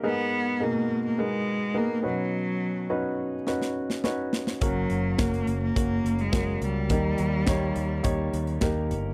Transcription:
<<
  \new Staff \with { instrumentName = "Upright piano" } { \time 4/4 \key fis \major \tempo 4 = 105 <b dis' gis' ais'>4 <b, dis' gis' ais'>4 <b dis' gis' ais'>4 <b dis' gis' ais'>8 <cis' dis' fis' b'>8~ | <cis' dis' fis' b'>8 r8 <cis' dis' fis' b'>4 <cis' dis' fis' b'>4 <cis' dis' fis' b'>4 | <ais cis' fis' ais'>4 <ais cis' fis' ais'>4 <ais cis' fis' ais'>4 <ais cis' fis' ais'>4 | <ais dis' g' ais'>4 <ais dis' g' cis''>4 <ais dis' g' cis''>4 <ais dis' g' ais'>4 | }
  \new Staff \with { instrumentName = "Upright piano" } { \clef bass \time 4/4 \key fis \major gis,4. r2 b,8~ | b,4 r2. | r1 | dis4. r2 r8 | }
  \new Staff \with { instrumentName = "Cello" } { \time 4/4 \key fis \major b4 ais8. ais16 gis4 ais8 fis8~ | fis4. r2 r8 | fis4 ais8. ais4 gis8. g8~ | g2.~ g8 r8 | }
  \new Staff \with { instrumentName = "Picked electric bass" } { \clef bass \time 4/4 \key fis \major r1 | r1 | fis,,8 fis,,8 fis,,8 fis,,8 fis,,8 fis,,8 fis,,8 cis,8 | dis,8 dis,8 dis,8 dis,8 dis,8 dis,8 dis,8 g,,8 | }
  \new DrumStaff \with { instrumentName = "Drums" } \drummode { \time 4/4 r4 r4 r4 r4 | r4 r4 sn16 sn8 sn16 sn8 sn16 sn16 | <hh bd>8 hh8 <hh bd sn>16 hh16 hh8 <hh bd>8 hh16 hh16 <hh bd sn>8 hh8 | <hh bd>8 hh8 <hh bd sn>8 hh8 <hh bd>8 hh16 hh16 <hh bd sn>8 hh8 | }
>>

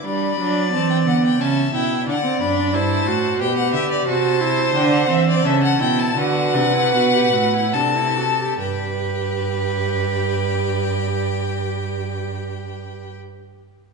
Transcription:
<<
  \new Staff \with { instrumentName = "Violin" } { \time 3/4 \key g \major \tempo 4 = 81 b''4 a''16 g''16 fis''16 g''16 a''8 g''8 | fis''8 b''8 a''4 g''16 fis''16 e''16 d''16 | a''4 g''16 fis''16 e''16 d''16 e''16 fis''16 g''16 a''16 | fis''2 a''4 |
g''2.~ | g''2. | }
  \new Staff \with { instrumentName = "Violin" } { \time 3/4 \key g \major d''2 e''4 | d''4 c''4 b'4 | c''2 a'4 | b'2 a'4 |
b'2.~ | b'2. | }
  \new Staff \with { instrumentName = "Viola" } { \time 3/4 \key g \major d'8 d'8 c'8 b8 cis'8 e'8 | d'16 c'16 d'8 e'8 fis'8 g'4 | fis'8 e'8 d'8 c'8 cis'8 e'8 | fis'8 d'16 e'16 fis'16 g'16 fis'16 e'16 d'16 e'16 fis'16 g'16 |
g'2.~ | g'2. | }
  \new Staff \with { instrumentName = "Cello" } { \clef bass \time 3/4 \key g \major g8 fis8 e8 d8 cis8 b,8 | d8 fis,8 g,8 a,8 b,8 d8 | c4 d8 e8 cis8 b,8 | d8 c8 b,8 a,8 c4 |
g,2.~ | g,2. | }
>>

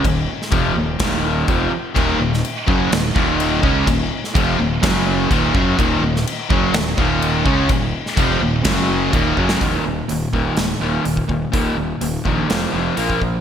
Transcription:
<<
  \new Staff \with { instrumentName = "Distorted electric guitar" } { \clef bass \time 4/4 \key ees \minor \tempo 4 = 125 <ees, bes,>8 r8 <f, c f>8 <ees, bes,>8 <ees, bes, ees>4 <f, c f>8 r8 | <ees, bes, ees>8 <ees, bes,>8 r8 <ges, des ges>8 <ees, bes,>8 <ees, bes, ees>4 <des aes des'>8 | <ees, bes,>8 r8 <f, c f>8 <ees, bes,>8 <ges, des ges>4 <ees, bes, ees>8 <ges, des ges>8 | <ees, bes, ees>8 <ees, bes,>8 r8 <ges, des ges>8 <ees, bes,>8 <ees, bes, ees>4 <des aes des'>8 |
<ees, bes,>8 r8 <f, c f>8 <ees, bes,>8 <ges, des ges>4 <ees, bes, ees>8 <ges, des ges>8 | <ees, bes, ees>8 <ees, bes,>8 <ees, bes,>8 <ees, bes, ees>8 <ees, bes,>8 <ees, bes, ees>8 <ees, bes,>8 <ees, bes,>8 | <ees, bes, ees>8 <ees, bes,>8 <ees, bes,>8 <ees, bes, ees>8 <f, c f>8 <f, c f>8 <bes, f bes>8 <bes, f>8 | }
  \new Staff \with { instrumentName = "Distorted electric guitar" } { \clef bass \time 4/4 \key ees \minor r1 | <ees, bes, ees>8 <ees, bes,>8 r8 <ges, des ges>8 <ees, bes,>8 <ees, bes, ees>4 <des aes des'>8 | <ees, bes,>8 r8 <f, c f>8 <ees, bes,>8 <ges, des ges>4 <ees, bes, ees>8 <ges, des ges>8 | <ees, bes, ees>8 <ees, bes,>8 r8 <ges, des ges>8 <ees, bes,>8 <ees, bes, ees>4 <des aes des'>8 |
<ees, bes,>8 r8 <f, c f>8 <ees, bes,>8 <ges, des ges>4 <ees, bes, ees>8 <ges, des ges>8 | r1 | r1 | }
  \new Staff \with { instrumentName = "Overdriven electric guitar" } { \clef bass \time 4/4 \key ees \minor <ees, bes,>8 r8 <f, c f>8 <ees, bes,>8 <ees, bes, ees>4 <f, c f>8 r8 | <ees, bes, ees>8 <ees, bes,>8 r8 <ges, des ges>8 <ees, bes,>8 <ees, bes, ees>4 <des aes des'>8 | <ees, bes,>8 r8 <f, c f>8 <ees, bes,>8 <ges, des ges>4 <ees, bes, ees>8 <ges, des ges>8 | <ees, bes, ees>8 <ees, bes,>8 r8 <ges, des ges>8 <ees, bes,>8 <ees, bes, ees>4 <des aes des'>8 |
<ees, bes,>8 r8 <f, c f>8 <ees, bes,>8 <ges, des ges>4 <ees, bes, ees>8 <ges, des ges>8 | <ees, bes, ees>8 <ees, bes,>8 <ees, bes,>8 <ees, bes, ees>8 <ees, bes,>8 <ees, bes, ees>8 <ees, bes,>8 <ees, bes,>8 | <ees, bes, ees>8 <ees, bes,>8 <ees, bes,>8 <ees, bes, ees>8 <f, c f>8 <f, c f>8 <bes, f bes>8 <bes, f>8 | }
  \new Staff \with { instrumentName = "Fingered electric bass" } { \clef bass \time 4/4 \key ees \minor ees,,8 r8 f,,8 ees,,8 ees,,4 f,,8 r8 | ees,,8 ees,,8 r8 ges,,8 ees,,8 ees,,4 des,8 | ees,,8 r8 f,,8 ees,,8 ges,,4 ees,,8 ges,,8 | ees,,8 ees,,8 r8 ges,,8 ees,,8 ees,,4 des,8 |
ees,,8 r8 f,,8 ees,,8 ges,,4 ees,,8 ges,,8 | ees,,8 ees,,8 ees,,8 ees,,8 ees,,8 ees,,8 ees,,8 ees,,8 | ees,,8 ees,,8 ees,,8 bes,,8 f,,8 f,,8 bes,,8 bes,,8 | }
  \new DrumStaff \with { instrumentName = "Drums" } \drummode { \time 4/4 <cymc bd>8. sn16 <cymc bd>4 <cymc bd sn>4 <cymc bd>4 | <cymc bd>8. sn16 cymc8 bd8 <cymc sn>8 bd8 cymc8 bd8 | <cymc bd>8. sn16 <cymc bd>4 <cymc bd sn>4 <cymc bd>8 bd8 | <cymc bd>8. sn16 cymc8 bd8 <cymc sn>8 bd8 cymc8 bd8 |
<cymc bd>8. sn16 <cymc bd>4 <cymc bd sn>4 <cymc bd>8 bd16 sn16 | <hho bd>4 hho8 bd8 <hho sn>4 hho16 bd16 bd8 | <hho bd>4 hho8 bd8 <hho sn>4 hho16 bd16 bd8 | }
>>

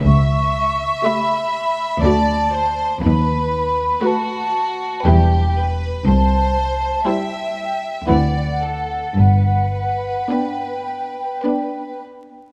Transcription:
<<
  \new Staff \with { instrumentName = "Flute section" } { \time 3/4 \key g \major \tempo 4 = 59 cis'''4 b''4 a''4 | b''4 a''4 g''4 | a''4 g''4 fis''4 | fis''4 g''4. r8 | }
  \new Staff \with { instrumentName = "Violin section" } { \time 3/4 \key g \major e''2 d''8 c''8 | b'4 fis'4 g'8 b'8 | c''4 e''4 d''8 a'8 | b'2~ b'8 r8 | }
  \new Staff \with { instrumentName = "Violin section" } { \time 3/4 \key g \major r4 e''4 d''4 | r4 b'4 b'4 | r4 c''4 b'4 | r4 b'4 b'4 | }
  \new Staff \with { instrumentName = "Viola section" } { \time 3/4 \key g \major r4 <a g'>4 <a fis'>4 | r4 <a fis'>4 <g e'>4 | r4 <g e'>4 <c' e'>4 | r4 <b d'>4 <b d'>4 | }
  \new Staff \with { instrumentName = "Cello section" } { \clef bass \time 3/4 \key g \major cis,4 r4 d,4 | dis,4 r4 e,4 | c,4 r4 d,4 | g,4 r2 | }
  \new Staff \with { instrumentName = "Double bass section" } { \clef bass \time 3/4 \key g \major cis,4 r4 d,4 | dis,4 r4 e,,4 | c,4 r4 d,4 | g,,4 r2 | }
>>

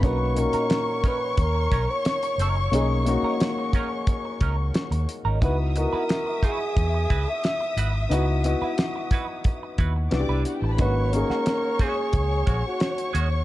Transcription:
<<
  \new Staff \with { instrumentName = "Violin section" } { \time 4/4 \key cis \dorian \tempo 4 = 89 <cis'' cis'''>1~ | <cis'' cis'''>2.~ <cis'' cis'''>8 r8 | <e'' dis'''>1~ | <e'' dis'''>2~ <e'' dis'''>8 r8 <d'' d'''>16. r32 <fis' fis''>32 <g' g''>32 <a' a''>32 <b' b''>32 |
<cis'' cis'''>1 | }
  \new Staff \with { instrumentName = "Flugelhorn" } { \time 4/4 \key cis \dorian b'8 ais'4 b'8 ais'8. cis''8. r8 | r1 | b'8 ais'4 gis'4~ gis'16 e''8. r8 | r1 |
b'8 ais'4 gis'4~ gis'16 fis'8. r8 | }
  \new Staff \with { instrumentName = "Clean electric guitar" } { \time 4/4 \key cis \dorian <cis' dis' ais'>16 r8 <cis' dis' ais'>16 r8 <cis' dis' ais'>16 r8. <cis' dis' ais'>16 r8. <cis' dis' ais'>16 r16 | <cis' dis' ais'>16 r8 <cis' dis' ais'>16 r8 <cis' dis' ais'>16 r8. <cis' dis' ais'>16 r4 <cis' dis' ais'>16 | <e' fis' b'>16 r8 <e' fis' b'>16 r8 <e' fis' b'>16 r8. <e' fis' b'>16 r8. <e' fis' b'>16 r16 | <e' fis' b'>16 r8 <e' fis' b'>16 r8 <e' fis' b'>16 r8. <e' fis' b'>16 r8 <d' e' b'>16 r8 |
<gis cis' fis'>16 r8 <gis cis' fis'>16 r8 <gis cis' fis'>16 r8. <gis cis' fis'>16 r8. <gis cis' fis'>16 r16 | }
  \new Staff \with { instrumentName = "Grand piano" } { \time 4/4 \key cis \dorian <ais cis' dis' fis'>8 <ais, cis' dis' fis'>4. r2 | <ais cis' dis' gis'>8 <ais cis' dis' fis'>4. r2 | <b dis' e' fis'>8 <b e' fis' dis''>4. r2 | <b dis' e' fis'>8 <b e' fis' dis''>4. r4 <b d' e' fis' g'>4 |
<ais cis' dis' fis'>8 <ais cis' dis' gis'>4. r2 | }
  \new Staff \with { instrumentName = "Fingered electric bass" } { \clef bass \time 4/4 \key cis \dorian b,,8. r4 r16 dis,8 b,,16 r8. fis,,8 | b,,8. r4. r16 cis,8 r16 dis,16 r16 gis,,16 | cis,8. r4 r16 e,8 cis,16 r8. gis,,8 | cis,8. r4. r16 dis,8 c,16 c,16 r16 a,,16 |
gis,,8. r4 r16 cis,8 ais,,16 r8. dis,8 | }
  \new DrumStaff \with { instrumentName = "Drums" } \drummode { \time 4/4 <hh bd>8 hh16 hh16 <hh sn>8 <hh bd>8 <hh bd>8 <hh bd>8 <hh sn>16 hh16 hh8 | hh8 hh8 <hh sn>8 <hh bd>8 <hh bd>8 <hh bd>8 <hh sn>16 hh16 hh8 | <hh bd>8 hh8 <hh sn>8 <hh bd>8 <hh bd>8 <hh bd>8 <hh sn>8 hh8 | hh8 hh8 <hh sn>8 <hh bd>8 <hh bd>8 <hh bd>8 <hh sn>8 hh8 |
<hh bd>8 hh16 sn16 <hh sn>8 <hh bd>8 <hh bd>8 <hh bd>8 <hh sn>16 hh16 hh8 | }
>>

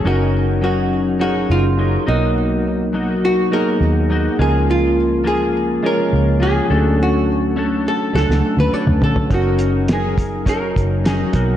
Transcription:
<<
  \new Staff \with { instrumentName = "Hollow-body jazz guitar" } { \time 4/4 \key fis \major \tempo 4 = 104 fis'4 fis'4 fis'8 eis'4 dis'8~ | dis'4. fis'8 ais'4. gis'8 | eis'4 gis'4 ais'4 gis'4 | fis'4 r8 a'8 a'8. b'16 cis''8 a'8 |
fis'4 gis'4 ais'4 gis'4 | }
  \new Staff \with { instrumentName = "Tine electric piano" } { \time 4/4 \key fis \major <fis cis' dis' ais'>4. r8 <fis cis' dis' gis'>4. <fis b dis' ais'>8~ | <fis b dis' ais'>4 r4 <fis b dis' gis'>4. <gis cis' eis' ais'>8~ | <gis cis' eis' ais'>4 r4 <gis cis' eis' cis''>4. <fis cis' d' a'>8~ | <fis cis' d' a'>4 r4 <fis cis' d' a'>4. r8 |
<fis cis' dis' ais'>4. r8 <fis cis' dis' ais'>4. <fis b dis' ais'>8 | }
  \new Staff \with { instrumentName = "Clean electric guitar" } { \time 4/4 \key fis \major <fis cis' dis' ais'>4 <fis cis' dis' ais'>4 <fis cis' dis' ais'>4 <fis cis' dis' ais'>8 <b, fis ais dis' fis'>8~ | <b, fis ais dis' fis'>4 <fis ais dis' fis'>4 <fis ais dis' fis'>4 <fis ais dis' fis'>8 <cis eis ais eis' gis'>8~ | <cis eis ais eis' gis'>4 <eis ais eis' gis'>4 <eis ais eis' gis'>4 <eis ais eis' gis'>8 <d a cis' fis' a'>8~ | <d a cis' fis' a'>4 <a cis' fis' a'>4 <a cis' fis' a'>4 <a cis' fis' a'>4 |
<fis cis' dis' ais'>4 <fis cis' dis' ais'>4 <fis cis' dis' ais'>4 <fis cis' dis' ais'>8 <b, fis ais dis' fis'>8 | }
  \new Staff \with { instrumentName = "Fingered electric bass" } { \clef bass \time 4/4 \key fis \major fis,,2~ fis,,8 fis,,4 b,,8~ | b,,2~ b,,8 dis,4 cis,8~ | cis,2~ cis,8 cis,4 d,8~ | d,2 cis,16 cis,16 r16 d,16 r16 d,16 d8 |
fis,,2~ fis,,8 fis,,4 b,,8 | }
  \new DrumStaff \with { instrumentName = "Drums" } \drummode { \time 4/4 r4 r4 r4 r4 | r4 r4 r4 r4 | r4 r4 r4 r4 | r4 r4 sn16 sn8 tommh16 r16 toml16 tomfh16 tomfh16 |
<hh bd>8 hh8 <hh sn>8 <hh bd>8 <hh bd>8 <hh bd>8 <hh sn>8 <hh bd>8 | }
>>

